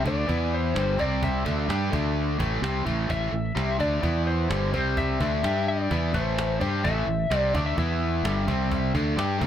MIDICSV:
0, 0, Header, 1, 5, 480
1, 0, Start_track
1, 0, Key_signature, 0, "minor"
1, 0, Tempo, 468019
1, 1254, Time_signature, 4, 2, 24, 8
1, 9710, End_track
2, 0, Start_track
2, 0, Title_t, "Lead electric guitar"
2, 0, Program_c, 0, 29
2, 76, Note_on_c, 0, 74, 89
2, 559, Note_off_c, 0, 74, 0
2, 559, Note_on_c, 0, 72, 77
2, 1022, Note_on_c, 0, 74, 84
2, 1041, Note_off_c, 0, 72, 0
2, 1265, Note_off_c, 0, 74, 0
2, 1270, Note_on_c, 0, 76, 80
2, 1710, Note_off_c, 0, 76, 0
2, 3184, Note_on_c, 0, 76, 90
2, 3859, Note_off_c, 0, 76, 0
2, 3902, Note_on_c, 0, 74, 93
2, 4379, Note_on_c, 0, 72, 81
2, 4394, Note_off_c, 0, 74, 0
2, 4849, Note_off_c, 0, 72, 0
2, 4861, Note_on_c, 0, 72, 74
2, 5105, Note_off_c, 0, 72, 0
2, 5106, Note_on_c, 0, 76, 99
2, 5825, Note_off_c, 0, 76, 0
2, 5829, Note_on_c, 0, 74, 84
2, 6301, Note_on_c, 0, 72, 76
2, 6316, Note_off_c, 0, 74, 0
2, 6769, Note_off_c, 0, 72, 0
2, 6781, Note_on_c, 0, 72, 79
2, 7017, Note_on_c, 0, 76, 92
2, 7025, Note_off_c, 0, 72, 0
2, 7571, Note_off_c, 0, 76, 0
2, 7571, Note_on_c, 0, 74, 92
2, 7744, Note_off_c, 0, 74, 0
2, 7748, Note_on_c, 0, 74, 79
2, 7852, Note_off_c, 0, 74, 0
2, 7856, Note_on_c, 0, 76, 99
2, 7978, Note_off_c, 0, 76, 0
2, 7989, Note_on_c, 0, 76, 82
2, 9710, Note_off_c, 0, 76, 0
2, 9710, End_track
3, 0, Start_track
3, 0, Title_t, "Overdriven electric guitar"
3, 0, Program_c, 1, 29
3, 49, Note_on_c, 1, 50, 81
3, 54, Note_on_c, 1, 57, 100
3, 59, Note_on_c, 1, 62, 95
3, 278, Note_off_c, 1, 50, 0
3, 282, Note_on_c, 1, 52, 78
3, 284, Note_off_c, 1, 57, 0
3, 288, Note_on_c, 1, 59, 92
3, 289, Note_off_c, 1, 62, 0
3, 295, Note_on_c, 1, 64, 92
3, 761, Note_off_c, 1, 52, 0
3, 763, Note_on_c, 1, 43, 91
3, 764, Note_off_c, 1, 59, 0
3, 768, Note_off_c, 1, 64, 0
3, 769, Note_on_c, 1, 50, 72
3, 773, Note_on_c, 1, 55, 86
3, 995, Note_off_c, 1, 50, 0
3, 998, Note_off_c, 1, 55, 0
3, 999, Note_on_c, 1, 48, 77
3, 1002, Note_off_c, 1, 43, 0
3, 1010, Note_on_c, 1, 55, 78
3, 1016, Note_on_c, 1, 60, 91
3, 1480, Note_off_c, 1, 48, 0
3, 1484, Note_off_c, 1, 55, 0
3, 1484, Note_on_c, 1, 50, 92
3, 1487, Note_off_c, 1, 60, 0
3, 1488, Note_on_c, 1, 57, 92
3, 1491, Note_on_c, 1, 62, 104
3, 1718, Note_off_c, 1, 62, 0
3, 1723, Note_off_c, 1, 50, 0
3, 1725, Note_off_c, 1, 57, 0
3, 1730, Note_on_c, 1, 55, 73
3, 1731, Note_on_c, 1, 62, 82
3, 1736, Note_on_c, 1, 67, 82
3, 1955, Note_off_c, 1, 62, 0
3, 1957, Note_on_c, 1, 50, 79
3, 1958, Note_off_c, 1, 55, 0
3, 1962, Note_on_c, 1, 57, 94
3, 1968, Note_on_c, 1, 62, 88
3, 1969, Note_off_c, 1, 67, 0
3, 2440, Note_off_c, 1, 50, 0
3, 2442, Note_off_c, 1, 57, 0
3, 2445, Note_off_c, 1, 62, 0
3, 2448, Note_on_c, 1, 45, 79
3, 2449, Note_on_c, 1, 52, 85
3, 2456, Note_on_c, 1, 57, 80
3, 2685, Note_off_c, 1, 45, 0
3, 2686, Note_off_c, 1, 52, 0
3, 2689, Note_off_c, 1, 57, 0
3, 2690, Note_on_c, 1, 48, 81
3, 2693, Note_on_c, 1, 55, 74
3, 2699, Note_on_c, 1, 60, 90
3, 2919, Note_off_c, 1, 48, 0
3, 2922, Note_off_c, 1, 55, 0
3, 2923, Note_on_c, 1, 45, 80
3, 2926, Note_on_c, 1, 52, 75
3, 2929, Note_off_c, 1, 60, 0
3, 2933, Note_on_c, 1, 57, 76
3, 3151, Note_off_c, 1, 45, 0
3, 3157, Note_off_c, 1, 52, 0
3, 3159, Note_off_c, 1, 57, 0
3, 3163, Note_on_c, 1, 45, 81
3, 3170, Note_on_c, 1, 52, 85
3, 3171, Note_on_c, 1, 57, 97
3, 3394, Note_off_c, 1, 45, 0
3, 3397, Note_off_c, 1, 52, 0
3, 3406, Note_on_c, 1, 45, 57
3, 3407, Note_off_c, 1, 57, 0
3, 3409, Note_on_c, 1, 52, 74
3, 3603, Note_off_c, 1, 45, 0
3, 3605, Note_off_c, 1, 52, 0
3, 3640, Note_on_c, 1, 55, 78
3, 3641, Note_on_c, 1, 48, 65
3, 3649, Note_on_c, 1, 60, 87
3, 3880, Note_off_c, 1, 48, 0
3, 3881, Note_off_c, 1, 55, 0
3, 3884, Note_on_c, 1, 50, 75
3, 3885, Note_on_c, 1, 57, 89
3, 3886, Note_off_c, 1, 60, 0
3, 3890, Note_on_c, 1, 62, 86
3, 4122, Note_off_c, 1, 57, 0
3, 4123, Note_off_c, 1, 50, 0
3, 4126, Note_off_c, 1, 62, 0
3, 4126, Note_on_c, 1, 59, 92
3, 4127, Note_on_c, 1, 52, 80
3, 4136, Note_on_c, 1, 64, 83
3, 4604, Note_off_c, 1, 52, 0
3, 4604, Note_off_c, 1, 59, 0
3, 4604, Note_on_c, 1, 43, 86
3, 4609, Note_off_c, 1, 64, 0
3, 4612, Note_on_c, 1, 50, 81
3, 4617, Note_on_c, 1, 55, 87
3, 4843, Note_off_c, 1, 43, 0
3, 4843, Note_off_c, 1, 55, 0
3, 4847, Note_off_c, 1, 50, 0
3, 4852, Note_on_c, 1, 48, 76
3, 4855, Note_on_c, 1, 55, 79
3, 4861, Note_on_c, 1, 60, 84
3, 5326, Note_off_c, 1, 48, 0
3, 5328, Note_off_c, 1, 55, 0
3, 5331, Note_off_c, 1, 60, 0
3, 5334, Note_on_c, 1, 50, 85
3, 5340, Note_on_c, 1, 57, 93
3, 5347, Note_on_c, 1, 62, 103
3, 5566, Note_off_c, 1, 57, 0
3, 5567, Note_off_c, 1, 50, 0
3, 5568, Note_off_c, 1, 62, 0
3, 5570, Note_on_c, 1, 55, 68
3, 5580, Note_on_c, 1, 62, 88
3, 5580, Note_on_c, 1, 67, 85
3, 6045, Note_off_c, 1, 55, 0
3, 6050, Note_off_c, 1, 62, 0
3, 6050, Note_off_c, 1, 67, 0
3, 6051, Note_on_c, 1, 52, 77
3, 6062, Note_on_c, 1, 59, 76
3, 6063, Note_on_c, 1, 64, 95
3, 6286, Note_off_c, 1, 52, 0
3, 6291, Note_off_c, 1, 59, 0
3, 6291, Note_off_c, 1, 64, 0
3, 6293, Note_on_c, 1, 45, 77
3, 6297, Note_on_c, 1, 52, 83
3, 6301, Note_on_c, 1, 57, 94
3, 6766, Note_off_c, 1, 45, 0
3, 6768, Note_off_c, 1, 52, 0
3, 6770, Note_off_c, 1, 57, 0
3, 6772, Note_on_c, 1, 55, 69
3, 6777, Note_on_c, 1, 62, 76
3, 6783, Note_on_c, 1, 67, 82
3, 7006, Note_off_c, 1, 55, 0
3, 7008, Note_off_c, 1, 62, 0
3, 7008, Note_on_c, 1, 45, 80
3, 7011, Note_off_c, 1, 67, 0
3, 7017, Note_on_c, 1, 52, 92
3, 7022, Note_on_c, 1, 57, 85
3, 7238, Note_off_c, 1, 45, 0
3, 7245, Note_off_c, 1, 52, 0
3, 7250, Note_on_c, 1, 45, 74
3, 7251, Note_off_c, 1, 57, 0
3, 7257, Note_on_c, 1, 52, 69
3, 7444, Note_off_c, 1, 45, 0
3, 7447, Note_off_c, 1, 52, 0
3, 7498, Note_on_c, 1, 48, 80
3, 7500, Note_on_c, 1, 55, 80
3, 7508, Note_on_c, 1, 60, 92
3, 7728, Note_off_c, 1, 48, 0
3, 7729, Note_off_c, 1, 55, 0
3, 7733, Note_off_c, 1, 60, 0
3, 7739, Note_on_c, 1, 50, 74
3, 7747, Note_on_c, 1, 57, 89
3, 7754, Note_on_c, 1, 62, 96
3, 7969, Note_off_c, 1, 50, 0
3, 7973, Note_off_c, 1, 57, 0
3, 7977, Note_off_c, 1, 62, 0
3, 7979, Note_on_c, 1, 52, 78
3, 7982, Note_on_c, 1, 59, 87
3, 7987, Note_on_c, 1, 64, 88
3, 8449, Note_off_c, 1, 52, 0
3, 8450, Note_off_c, 1, 59, 0
3, 8452, Note_off_c, 1, 64, 0
3, 8463, Note_on_c, 1, 43, 84
3, 8465, Note_on_c, 1, 50, 86
3, 8472, Note_on_c, 1, 55, 77
3, 8684, Note_off_c, 1, 55, 0
3, 8686, Note_off_c, 1, 50, 0
3, 8690, Note_on_c, 1, 48, 75
3, 8691, Note_off_c, 1, 43, 0
3, 8696, Note_on_c, 1, 55, 83
3, 8697, Note_on_c, 1, 60, 77
3, 9164, Note_off_c, 1, 48, 0
3, 9167, Note_off_c, 1, 55, 0
3, 9167, Note_off_c, 1, 60, 0
3, 9171, Note_on_c, 1, 50, 86
3, 9176, Note_on_c, 1, 57, 93
3, 9179, Note_on_c, 1, 62, 103
3, 9395, Note_off_c, 1, 62, 0
3, 9399, Note_off_c, 1, 57, 0
3, 9403, Note_on_c, 1, 55, 79
3, 9404, Note_off_c, 1, 50, 0
3, 9407, Note_on_c, 1, 62, 75
3, 9417, Note_on_c, 1, 67, 93
3, 9633, Note_off_c, 1, 62, 0
3, 9638, Note_on_c, 1, 50, 79
3, 9642, Note_off_c, 1, 55, 0
3, 9642, Note_on_c, 1, 57, 86
3, 9645, Note_on_c, 1, 62, 94
3, 9647, Note_off_c, 1, 67, 0
3, 9710, Note_off_c, 1, 50, 0
3, 9710, Note_off_c, 1, 57, 0
3, 9710, Note_off_c, 1, 62, 0
3, 9710, End_track
4, 0, Start_track
4, 0, Title_t, "Fingered electric bass"
4, 0, Program_c, 2, 33
4, 59, Note_on_c, 2, 38, 83
4, 279, Note_off_c, 2, 38, 0
4, 301, Note_on_c, 2, 40, 88
4, 744, Note_off_c, 2, 40, 0
4, 770, Note_on_c, 2, 31, 87
4, 995, Note_off_c, 2, 31, 0
4, 1020, Note_on_c, 2, 36, 85
4, 1465, Note_off_c, 2, 36, 0
4, 1499, Note_on_c, 2, 38, 71
4, 1721, Note_off_c, 2, 38, 0
4, 1729, Note_on_c, 2, 43, 77
4, 1955, Note_off_c, 2, 43, 0
4, 1978, Note_on_c, 2, 38, 75
4, 2424, Note_off_c, 2, 38, 0
4, 2461, Note_on_c, 2, 33, 85
4, 2682, Note_off_c, 2, 33, 0
4, 2689, Note_on_c, 2, 36, 94
4, 2916, Note_off_c, 2, 36, 0
4, 2936, Note_on_c, 2, 33, 80
4, 3160, Note_off_c, 2, 33, 0
4, 3179, Note_on_c, 2, 33, 78
4, 3401, Note_off_c, 2, 33, 0
4, 3410, Note_on_c, 2, 33, 55
4, 3636, Note_off_c, 2, 33, 0
4, 3651, Note_on_c, 2, 36, 80
4, 3877, Note_off_c, 2, 36, 0
4, 3901, Note_on_c, 2, 38, 81
4, 4122, Note_off_c, 2, 38, 0
4, 4133, Note_on_c, 2, 40, 78
4, 4581, Note_off_c, 2, 40, 0
4, 4617, Note_on_c, 2, 31, 99
4, 4840, Note_off_c, 2, 31, 0
4, 4859, Note_on_c, 2, 36, 86
4, 5304, Note_off_c, 2, 36, 0
4, 5338, Note_on_c, 2, 38, 75
4, 5560, Note_off_c, 2, 38, 0
4, 5574, Note_on_c, 2, 43, 85
4, 6021, Note_off_c, 2, 43, 0
4, 6062, Note_on_c, 2, 40, 85
4, 6282, Note_off_c, 2, 40, 0
4, 6299, Note_on_c, 2, 33, 78
4, 6743, Note_off_c, 2, 33, 0
4, 6782, Note_on_c, 2, 43, 86
4, 7002, Note_off_c, 2, 43, 0
4, 7023, Note_on_c, 2, 33, 86
4, 7242, Note_off_c, 2, 33, 0
4, 7256, Note_on_c, 2, 33, 61
4, 7478, Note_off_c, 2, 33, 0
4, 7493, Note_on_c, 2, 36, 67
4, 7716, Note_off_c, 2, 36, 0
4, 7735, Note_on_c, 2, 38, 77
4, 7958, Note_off_c, 2, 38, 0
4, 7976, Note_on_c, 2, 40, 86
4, 8421, Note_off_c, 2, 40, 0
4, 8443, Note_on_c, 2, 31, 93
4, 8671, Note_off_c, 2, 31, 0
4, 8697, Note_on_c, 2, 36, 84
4, 9141, Note_off_c, 2, 36, 0
4, 9176, Note_on_c, 2, 38, 75
4, 9397, Note_off_c, 2, 38, 0
4, 9407, Note_on_c, 2, 43, 73
4, 9632, Note_off_c, 2, 43, 0
4, 9657, Note_on_c, 2, 38, 78
4, 9710, Note_off_c, 2, 38, 0
4, 9710, End_track
5, 0, Start_track
5, 0, Title_t, "Cajon"
5, 58, Note_on_c, 9, 36, 92
5, 161, Note_off_c, 9, 36, 0
5, 300, Note_on_c, 9, 36, 76
5, 403, Note_off_c, 9, 36, 0
5, 781, Note_on_c, 9, 38, 102
5, 884, Note_off_c, 9, 38, 0
5, 1018, Note_on_c, 9, 36, 76
5, 1120, Note_off_c, 9, 36, 0
5, 1257, Note_on_c, 9, 36, 104
5, 1360, Note_off_c, 9, 36, 0
5, 1498, Note_on_c, 9, 36, 96
5, 1600, Note_off_c, 9, 36, 0
5, 1744, Note_on_c, 9, 38, 94
5, 1846, Note_off_c, 9, 38, 0
5, 1981, Note_on_c, 9, 36, 91
5, 2083, Note_off_c, 9, 36, 0
5, 2461, Note_on_c, 9, 36, 102
5, 2564, Note_off_c, 9, 36, 0
5, 2706, Note_on_c, 9, 38, 104
5, 2808, Note_off_c, 9, 38, 0
5, 2940, Note_on_c, 9, 36, 81
5, 3042, Note_off_c, 9, 36, 0
5, 3178, Note_on_c, 9, 36, 110
5, 3281, Note_off_c, 9, 36, 0
5, 3661, Note_on_c, 9, 38, 96
5, 3764, Note_off_c, 9, 38, 0
5, 3900, Note_on_c, 9, 36, 89
5, 4002, Note_off_c, 9, 36, 0
5, 4137, Note_on_c, 9, 36, 84
5, 4240, Note_off_c, 9, 36, 0
5, 4621, Note_on_c, 9, 38, 101
5, 4724, Note_off_c, 9, 38, 0
5, 4859, Note_on_c, 9, 36, 78
5, 4962, Note_off_c, 9, 36, 0
5, 5099, Note_on_c, 9, 36, 101
5, 5202, Note_off_c, 9, 36, 0
5, 5339, Note_on_c, 9, 36, 92
5, 5442, Note_off_c, 9, 36, 0
5, 5582, Note_on_c, 9, 38, 100
5, 5684, Note_off_c, 9, 38, 0
5, 6061, Note_on_c, 9, 36, 93
5, 6164, Note_off_c, 9, 36, 0
5, 6301, Note_on_c, 9, 36, 90
5, 6403, Note_off_c, 9, 36, 0
5, 6549, Note_on_c, 9, 38, 108
5, 6651, Note_off_c, 9, 38, 0
5, 6783, Note_on_c, 9, 36, 73
5, 6885, Note_off_c, 9, 36, 0
5, 7022, Note_on_c, 9, 36, 101
5, 7124, Note_off_c, 9, 36, 0
5, 7502, Note_on_c, 9, 38, 96
5, 7605, Note_off_c, 9, 38, 0
5, 7739, Note_on_c, 9, 36, 98
5, 7842, Note_off_c, 9, 36, 0
5, 7978, Note_on_c, 9, 36, 81
5, 8080, Note_off_c, 9, 36, 0
5, 8461, Note_on_c, 9, 38, 108
5, 8564, Note_off_c, 9, 38, 0
5, 8698, Note_on_c, 9, 36, 86
5, 8801, Note_off_c, 9, 36, 0
5, 8939, Note_on_c, 9, 36, 98
5, 9042, Note_off_c, 9, 36, 0
5, 9177, Note_on_c, 9, 36, 92
5, 9279, Note_off_c, 9, 36, 0
5, 9422, Note_on_c, 9, 38, 99
5, 9524, Note_off_c, 9, 38, 0
5, 9656, Note_on_c, 9, 36, 101
5, 9710, Note_off_c, 9, 36, 0
5, 9710, End_track
0, 0, End_of_file